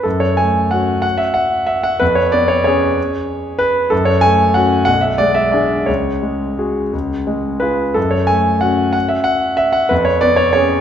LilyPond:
\new Staff \with { instrumentName = "Grand piano" } { \time 3/4 \key fis \minor \tempo 4 = 184 << { a'8 cis''8 gis''4 fis''4 | fis''8 e''8 fis''4 e''8 fis''8 | b'8 cis''8 d''8 cis''8 cis''4~ | cis''2 b'4 |
a'8 cis''8 gis''4 fis''4 | fis''8 e''8 d''8 e''8 d''4 | cis''2.~ | cis''2 b'4 |
a'8 cis''8 gis''4 fis''4 | fis''8 e''8 fis''4 e''8 fis''8 | b'8 cis''8 d''8 cis''8 cis''4 | } \\ { fis,4 a4 <cis' fis'>4~ | <cis' fis'>2. | eis,4 b4 <cis' gis'>4~ | <cis' gis'>2. |
fis,4 a4 <cis' fis'>4 | b,,4 gis4 <d' gis'>4 | cis,4 gis4 <fis' gis'>4 | cis,4 gis4 <eis' gis'>4 |
fis,4 a4 <cis' fis'>4~ | <cis' fis'>2. | eis,4 b4 <cis' gis'>4 | } >> }